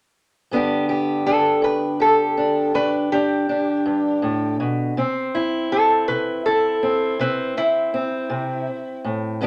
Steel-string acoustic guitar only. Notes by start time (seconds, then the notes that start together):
0.51 G2 D3 B3 D4 G4
0.89 G4
1.26 D4
1.62 G2
2.00 G4
2.37 D4
2.74 G2 D4
3.13 D4
3.49 D4
3.86 G2
4.22 A2
4.60 B2
4.97 C3 C4
5.35 E4
5.72 C4
6.08 C3
6.46 E4
6.83 C4
7.19 C3 C4
7.57 C4
7.94 C4
8.30 C3
9.04 A2
9.41 G2 D3 B3 D4